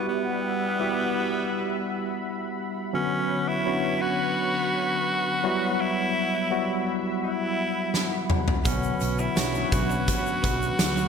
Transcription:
Already playing: tine electric piano G3 B3 E4 F#4 G4, analog synth pad G3 E5 F#5 B5
0.08 tenor saxophone B3
0.80 tine electric piano G3 B3 E4 F#4 G4
2.93 tine electric piano D3 F#3 B3 C#4 F#4, tenor saxophone C#4, analog synth pad B4 C#5 F#5
3.48 tenor saxophone E4
3.65 tine electric piano F#3 B3 C#4 D4 F#4
4.01 tenor saxophone F#4
5.43 tine electric piano F#3 G3 B3 E4 F#4, analog synth pad E5
5.81 tenor saxophone E4
6.51 tine electric piano F#3 G3 B3 E4 F#4
7.24 tenor saxophone E4
7.94 snare
8.30 mid tom
8.48 floor tom
8.64 fingered electric bass B1, tine electric piano D3 F#3 B3 C#4 F#4, clean electric guitar B3, tenor saxophone C#4, analog synth pad B4 C#5, kick, closed hi-hat, shaker
8.83 shaker
9.00 fingered electric bass B1, muted clean electric guitar stroke, closed hi-hat, shaker
9.18 clean electric guitar C#4, tenor saxophone E4, shaker
9.36 fingered electric bass B1, tine electric piano F#3 B3 C#4 D4 F#4, clean electric guitar D4, snare, closed hi-hat, tambourine, shaker
9.54 muted clean electric guitar stroke, shaker
9.72 fingered electric bass B1, tenor saxophone F#4, kick, closed hi-hat, shaker
9.90 clean electric guitar D4, shaker
10.08 kick, closed hi-hat, shaker
10.26 shaker
10.43 fingered electric bass B1, clean electric guitar B3, kick, closed hi-hat
10.62 shaker
10.79 fingered electric bass D2, snare, closed hi-hat, tambourine, shaker
10.96 clean electric guitar F#3, shaker

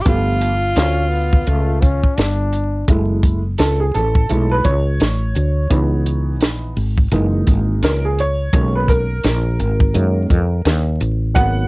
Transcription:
0.02 upright piano F3 A3, tenor saxophone G4, closed hi-hat
0.06 fretless electric bass G1, upright piano B3 G4, tenor saxophone F4, kick
0.41 closed hi-hat
0.76 fretless electric bass D2, trombone C#4, snare, closed hi-hat
1.10 trombone B3, open hi-hat
1.33 kick
1.47 fretless electric bass C#2, trombone A3, closed hi-hat
1.81 trombone C#4, kick, closed hi-hat
2.04 muted fretless electric bass stroke, kick
2.17 fretless electric bass G1, trombone D4, snare, closed hi-hat
2.53 closed hi-hat
2.88 fretless electric bass F#1, upright piano G#3 A3 E4, kick, closed hi-hat
3.23 kick, closed hi-hat
3.58 fretless electric bass C#2, upright piano A4, snare, closed hi-hat
3.80 upright piano G#4
3.94 fretless electric bass A1, upright piano A4, closed hi-hat
4.15 kick
4.29 fretless electric bass B1, upright piano G#3 A3 E4, closed hi-hat
4.51 upright piano B4
4.64 fretless electric bass C#2, upright piano C#5, kick, closed hi-hat
5.00 fretless electric bass A1, snare, closed hi-hat
5.35 fretless electric bass D2, closed hi-hat
5.70 fretless electric bass C#2, upright piano E3 B3 D#4, kick, closed hi-hat
6.06 closed hi-hat
6.41 fretless electric bass A#1, snare, closed hi-hat
6.77 fretless electric bass G#1, open hi-hat
6.98 kick
7.12 fretless electric bass F#1, upright piano E3 G#3 A#3 D#4, closed hi-hat
7.47 fretless electric bass G#1, kick, closed hi-hat
7.83 fretless electric bass C#2, upright piano A#4, snare, closed hi-hat
8.05 upright piano G#4
8.19 upright piano C#5, closed hi-hat
8.53 fretless electric bass B1, upright piano D#3 G#3 A#3 C#4, kick, closed hi-hat
8.75 upright piano B4
8.88 upright piano A#4, kick, closed hi-hat
9.24 fretless electric bass A#1, snare, closed hi-hat
9.59 fretless electric bass G#1, closed hi-hat
9.80 kick
9.94 fretless electric bass F#2, upright piano D#3 G#3 A#3 C#4, closed hi-hat
10.30 fretless electric bass F2, kick, closed hi-hat
10.65 fretless electric bass D#2, snare, closed hi-hat
11.00 fretless electric bass A1, closed hi-hat
11.34 fretless electric bass G#1, upright piano F#3 A#3 B3 F#5, kick, closed hi-hat

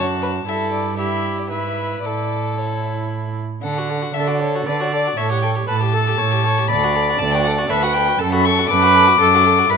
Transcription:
Already playing: cello F#2, viola F#4, violin A5
0.22 violin B4
0.46 cello G2, viola E4, violin A4 E5
0.72 violin D5
0.98 viola E4, violin G4 E5
1.38 violin D5
1.50 cello G#2, viola E4, violin B4 E5
2.03 cello A2, viola E4, violin A4 D5
2.57 viola E4, violin C#5
3.63 cello D3, violin A4 F#5
3.78 violin F#4
3.90 violin A4
4.02 violin F#4
4.14 cello D3, violin A4 E5, viola A4
4.27 violin F#4 D5
4.41 violin A4 C#5
4.55 violin F#4
4.66 cello D3, violin A4 B4, viola D5
4.81 violin F#4 C#5
4.93 violin A4 D5
5.07 violin F#4
5.17 cello A2, violin A4 E5, viola C#5
5.30 violin G4 F#5
5.42 violin A4 G5
5.56 violin G4
5.67 cello A2, violin A4 A5, viola B4
5.81 violin G4
5.92 viola A4, violin A4
6.07 violin G4
6.18 cello A2, violin A4, viola C#5
6.31 violin G4
6.44 violin A4, viola C#5
6.58 violin G4
6.68 cello D2, violin A4 B5, viola D5
6.84 violin F#4
6.95 violin A4
7.10 violin F#4
7.19 cello D2, violin A4 A5
7.32 violin F#4 G5
7.44 violin A4 F#5
7.58 violin F#4
7.70 cello D2, violin A4 E5, viola B4
7.83 violin F#4 F#5
7.94 violin A4 G5
8.08 violin F#4
8.19 cello F#2, viola A4, violin A4 A5
8.32 violin F#4 B5
8.46 violin A4 C#6
8.58 violin F#4
8.70 cello F#2, violin A4 D6, viola B4
8.83 violin F#4
8.95 violin A4
9.07 violin F#4
9.20 cello F#2, violin A4, viola A4
9.34 violin F#4
9.45 violin A4
9.59 violin F#4
9.70 cello G2, violin E4 B5, viola B4

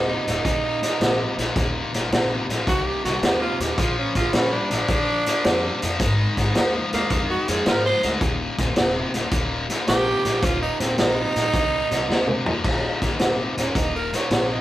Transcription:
Already playing: upright bass D#1, overdriven electric guitar D#2 C3
0.09 tenor saxophone D#4
0.27 upright bass D#1, overdriven electric guitar D#2 A#2, snare, closed hi-hat
0.45 upright bass D#1, overdriven electric guitar D#2 A#2, kick, closed hi-hat
0.83 overdriven electric guitar D#2 A#2, snare, closed hi-hat
1.00 upright bass A#1, overdriven electric guitar D#2 C3, snare, closed hi-hat
1.37 upright bass A#1, overdriven electric guitar D#2 A#2, snare, closed hi-hat
1.56 upright bass D#1, overdriven electric guitar D#2 A#2, kick, closed hi-hat
1.93 upright bass D#1, overdriven electric guitar D#2 A#2, snare, closed hi-hat
2.10 upright bass A#1, overdriven electric guitar D#2 C3, snare, closed hi-hat
2.49 upright bass A#1, overdriven electric guitar D#2 A#2, snare, closed hi-hat
2.67 upright bass C2, overdriven electric guitar D#2 A#2, tenor saxophone F#4, kick, closed hi-hat
2.87 tenor saxophone G4
3.04 upright bass C2, overdriven electric guitar D#2 A#2, tenor saxophone F#4, snare, closed hi-hat
3.22 upright bass D#2, overdriven electric guitar D#2 C3, tenor saxophone G4, snare, closed hi-hat
3.42 tenor saxophone F4
3.60 upright bass D#2, overdriven electric guitar D#2 A#2, tenor saxophone G4, snare, closed hi-hat
3.78 upright bass A#1, overdriven electric guitar A#2 F3, tenor saxophone F4, kick, closed hi-hat
3.99 tenor saxophone C#4
4.15 upright bass A#1, overdriven electric guitar A#2 F3, tenor saxophone F4, kick, snare, closed hi-hat
4.32 upright bass A#1, overdriven electric guitar A#2 G3, tenor saxophone C#4, snare, closed hi-hat
4.52 tenor saxophone D4
4.71 upright bass A#1, overdriven electric guitar A#2 F3, snare, closed hi-hat
4.88 upright bass A#1, overdriven electric guitar A#2 F3, kick, closed hi-hat
5.26 overdriven electric guitar A#2 F3, snare, closed hi-hat
5.44 upright bass F2, overdriven electric guitar A#2 G3, snare, closed hi-hat
5.82 upright bass F2, overdriven electric guitar A#2 F3, snare, closed hi-hat
6.00 upright bass G#1, overdriven electric guitar G#2 D#3, kick, closed hi-hat
6.37 upright bass G#1, overdriven electric guitar G#2 D#3, kick, snare, closed hi-hat
6.55 upright bass D#2, overdriven electric guitar G#2 F3, snare, closed hi-hat
6.93 upright bass D#2, overdriven electric guitar G#2 D#3, tenor saxophone A#3, snare, closed hi-hat
7.10 upright bass F2, overdriven electric guitar G#2 D#3, kick, closed hi-hat
7.30 tenor saxophone F#4
7.48 upright bass F2, overdriven electric guitar G#2 D#3, tenor saxophone G#4, snare, closed hi-hat
7.66 overdriven electric guitar G#2 F3, upright bass G#2, tenor saxophone A#4, snare, closed hi-hat
7.86 tenor saxophone C5
8.03 upright bass D2, overdriven electric guitar G#2 D#3, snare, closed hi-hat
8.21 upright bass D#1, overdriven electric guitar D#2 A#2, kick, closed hi-hat
8.58 upright bass D#1, overdriven electric guitar D#2 A#2, kick, snare, closed hi-hat
8.76 upright bass D#1, overdriven electric guitar D#2 C3, snare, closed hi-hat
9.14 upright bass D#1, overdriven electric guitar D#2 A#2, snare, closed hi-hat
9.31 upright bass D#1, overdriven electric guitar D#2 A#2, kick, closed hi-hat
9.70 overdriven electric guitar D#2 A#2, snare, closed hi-hat
9.87 upright bass A#1, overdriven electric guitar D#2 C3, tenor saxophone G4, snare, closed hi-hat
10.25 upright bass A#1, overdriven electric guitar D#2 A#2, snare, closed hi-hat
10.43 upright bass D#1, overdriven electric guitar D#2 A#2, tenor saxophone F4, kick, closed hi-hat
10.62 tenor saxophone D#4
10.80 upright bass D#1, overdriven electric guitar D#2 A#2, tenor saxophone C4, snare, closed hi-hat
10.98 upright bass A#1, overdriven electric guitar D#2 C3, tenor saxophone D#4, snare, closed hi-hat
11.36 upright bass A#1, overdriven electric guitar D#2 A#2, snare, closed hi-hat
11.53 upright bass C2, overdriven electric guitar D#2 A#2, kick, closed hi-hat
11.91 upright bass C2, overdriven electric guitar D#2 A#2, snare, closed hi-hat
12.09 upright bass D#2, overdriven electric guitar D#2 C3, snare
12.27 mid tom
12.46 overdriven electric guitar D#2 A#2, upright bass D#2, floor tom
12.64 upright bass D#1, overdriven electric guitar D#2 A#2, kick, crash
13.02 upright bass D#1, overdriven electric guitar D#2 A#2, kick, snare, closed hi-hat
13.19 upright bass D#1, overdriven electric guitar D#2 C3, snare, closed hi-hat
13.57 upright bass D#1, overdriven electric guitar D#2 A#2, tenor saxophone C#4, snare, closed hi-hat
13.75 upright bass D#1, overdriven electric guitar D#2 A#2, tenor saxophone D#4, kick, closed hi-hat
13.96 tenor saxophone A#4
14.13 overdriven electric guitar D#2 A#2, tenor saxophone C#5, snare, closed hi-hat
14.30 upright bass A#1, overdriven electric guitar D#2 C3, snare, closed hi-hat
14.52 tenor saxophone D#5

